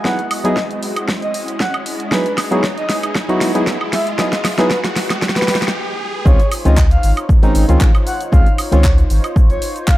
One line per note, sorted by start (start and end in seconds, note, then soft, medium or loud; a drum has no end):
0.00 5.70 G#3 medium
0.00 5.70 E4 medium
0.00 2.08 F#4 medium
0.00 5.70 D#5 medium
0.00 riser medium
0.04 0.20 F#3 medium
0.04 0.20 B3 medium
0.04 0.20 D#4 medium
0.04 0.20 E4 medium
0.04 0.20 G#4 medium
0.04 0.25 F#5 loud
0.04 kick loud
0.04 snare medium
0.19 closed hi-hat medium
0.31 open hi-hat loud
0.31 high woodblock medium
0.44 0.58 F#3 medium
0.44 0.58 B3 medium
0.44 0.58 D#4 medium
0.44 0.58 E4 medium
0.44 0.58 G#4 loud
0.44 0.64 D#5 loud
0.44 closed hi-hat medium
0.57 kick loud
0.57 snare medium
0.71 closed hi-hat medium
0.83 open hi-hat medium
0.96 closed hi-hat medium
0.96 high woodblock medium
1.08 kick loud
1.08 snare medium
1.22 1.42 D#5 loud
1.22 closed hi-hat soft
1.34 open hi-hat loud
1.48 closed hi-hat medium
1.60 1.74 F#5 medium
1.60 kick loud
1.60 snare medium
1.74 closed hi-hat soft
1.74 high woodblock medium
1.86 open hi-hat medium
2.00 closed hi-hat medium
2.11 2.27 F#3 medium
2.11 2.27 B3 medium
2.11 2.27 D#4 medium
2.11 2.27 E4 medium
2.11 5.70 G#4 medium
2.11 2.27 G#4 medium
2.11 2.32 B4 loud
2.11 kick loud
2.11 snare medium
2.26 closed hi-hat medium
2.38 snare medium
2.38 open hi-hat loud
2.38 high woodblock medium
2.51 2.65 F#3 medium
2.51 2.65 B3 medium
2.51 2.65 D#4 medium
2.51 2.65 E4 medium
2.51 2.65 G#4 loud
2.51 2.64 C#5 loud
2.51 closed hi-hat medium
2.64 kick loud
2.64 snare medium
2.77 2.97 D#5 loud
2.77 closed hi-hat medium
2.89 snare medium
2.89 open hi-hat medium
3.03 closed hi-hat medium
3.03 high woodblock medium
3.15 kick loud
3.15 snare medium
3.29 3.51 F#3 loud
3.29 3.52 B3 medium
3.29 3.52 D#4 medium
3.29 3.52 E4 medium
3.29 3.52 F#4 loud
3.29 closed hi-hat soft
3.41 snare medium
3.41 open hi-hat loud
3.54 3.77 F#3 medium
3.54 3.77 B3 medium
3.54 3.78 D#4 medium
3.54 3.78 E4 medium
3.54 3.78 G#4 medium
3.54 closed hi-hat medium
3.67 kick loud
3.67 snare medium
3.81 high woodblock medium
3.93 4.07 E5 medium
3.93 snare medium
3.93 open hi-hat medium
4.07 closed hi-hat medium
4.18 4.34 F#3 medium
4.18 4.34 B3 medium
4.18 4.34 D#4 medium
4.18 4.34 E4 medium
4.18 4.34 G#4 medium
4.18 4.39 D#5 loud
4.18 kick loud
4.18 snare loud
4.33 snare medium
4.33 closed hi-hat medium
4.45 snare loud
4.45 open hi-hat loud
4.45 high woodblock medium
4.58 4.72 F#3 loud
4.58 4.72 B3 medium
4.58 4.72 D#4 medium
4.58 4.72 E4 medium
4.58 4.72 G#4 loud
4.58 4.78 B4 loud
4.58 snare medium
4.58 closed hi-hat medium
4.70 kick loud
4.70 snare loud
4.84 snare medium
4.84 closed hi-hat medium
4.96 snare loud
4.96 open hi-hat medium
5.10 snare medium
5.10 closed hi-hat medium
5.10 high woodblock medium
5.22 kick loud
5.22 snare loud
5.29 snare medium
5.36 5.56 B4 loud
5.36 snare medium
5.36 closed hi-hat soft
5.42 snare medium
5.48 snare loud
5.48 open hi-hat loud
5.55 snare medium
5.62 snare medium
5.62 closed hi-hat medium
5.68 snare medium
6.25 6.35 C#2 loud
6.25 6.40 D#3 medium
6.25 6.41 G#3 medium
6.25 6.41 C4 medium
6.25 6.41 C#4 medium
6.25 9.98 D#4 medium
6.25 9.98 F4 medium
6.25 6.41 F4 medium
6.25 9.98 C5 medium
6.25 6.46 C#5 loud
6.25 9.98 C#5 medium
6.25 kick loud
6.25 shaker soft
6.40 closed hi-hat medium
6.40 shaker soft
6.52 open hi-hat loud
6.52 high woodblock medium
6.52 shaker medium
6.65 6.97 C#2 loud
6.65 6.78 D#3 medium
6.65 6.79 G#3 medium
6.65 6.79 C4 medium
6.65 6.79 C#4 medium
6.65 6.79 F4 loud
6.65 6.78 D#5 loud
6.65 closed hi-hat medium
6.65 shaker soft
6.77 kick loud
6.77 clap loud
6.77 shaker soft
6.91 7.11 F5 loud
6.91 closed hi-hat medium
6.91 shaker soft
7.03 7.12 G#1 loud
7.03 open hi-hat medium
7.03 shaker medium
7.17 closed hi-hat medium
7.17 high woodblock medium
7.17 shaker soft
7.29 kick loud
7.29 shaker soft
7.42 7.65 D#3 loud
7.42 7.65 G#3 medium
7.42 7.66 C4 medium
7.42 7.66 C#4 medium
7.42 7.66 D#4 loud
7.42 closed hi-hat soft
7.42 shaker soft
7.55 7.64 G#1 loud
7.55 open hi-hat loud
7.55 shaker medium
7.68 7.77 C#2 medium
7.68 7.91 D#3 medium
7.68 7.91 G#3 medium
7.68 7.91 C4 medium
7.68 7.92 C#4 medium
7.68 7.92 F4 medium
7.68 closed hi-hat medium
7.68 shaker soft
7.81 kick loud
7.81 clap loud
7.81 shaker soft
7.95 closed hi-hat soft
7.95 high woodblock medium
7.95 shaker soft
8.07 8.21 F#5 medium
8.07 open hi-hat medium
8.07 shaker medium
8.21 closed hi-hat medium
8.21 shaker soft
8.32 8.42 C#2 loud
8.32 8.47 D#3 medium
8.32 8.47 G#3 medium
8.32 8.48 C4 medium
8.32 8.48 C#4 medium
8.32 8.48 F4 medium
8.32 8.53 F5 loud
8.32 kick loud
8.32 shaker soft
8.46 closed hi-hat medium
8.46 shaker soft
8.58 open hi-hat loud
8.58 high woodblock medium
8.58 shaker medium
8.72 9.03 C#2 loud
8.72 8.85 D#3 loud
8.72 8.86 G#3 medium
8.72 8.86 C4 medium
8.72 8.86 C#4 medium
8.72 8.86 F4 loud
8.72 8.92 C#5 medium
8.72 closed hi-hat medium
8.72 shaker soft
8.84 kick loud
8.84 clap loud
8.84 shaker soft
8.98 closed hi-hat medium
8.98 shaker soft
9.10 9.19 G#1 loud
9.10 open hi-hat medium
9.10 shaker medium
9.24 closed hi-hat medium
9.24 high woodblock medium
9.24 shaker soft
9.36 kick loud
9.36 shaker soft
9.50 9.58 G#1 loud
9.50 9.69 C#5 loud
9.50 closed hi-hat soft
9.50 shaker soft
9.62 open hi-hat loud
9.62 shaker medium
9.76 closed hi-hat medium
9.76 shaker soft
9.88 9.98 F5 medium
9.88 kick loud
9.88 clap loud
9.88 shaker soft